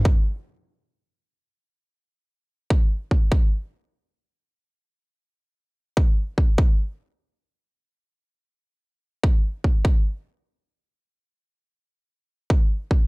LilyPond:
\new DrumStaff \with { instrumentName = "Drums" } \drummode { \time 4/4 \tempo 4 = 147 bd4 r4 r4 r4 | r4 r4 r8 bd8 r8 bd8 | bd4 r4 r4 r4 | r4 r4 r8 bd8 r8 bd8 |
bd4 r4 r4 r4 | r4 r4 r8 bd8 r8 bd8 | bd4 r4 r4 r4 | r4 r4 r8 bd8 r8 bd8 | }